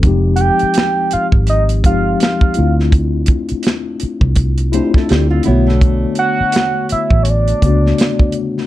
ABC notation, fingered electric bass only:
X:1
M:4/4
L:1/16
Q:"Swing 16ths" 1/4=83
K:Bphr
V:1 name="Fingered electric bass" clef=bass
=F,,,3 z4 _A,,,3 G,,,2 z2 D,,2- | D,,3 z4 C,,4 z D,,2 B,,,2- | B,,,2 z4 z A,,,3 ^C,,2 z4 |]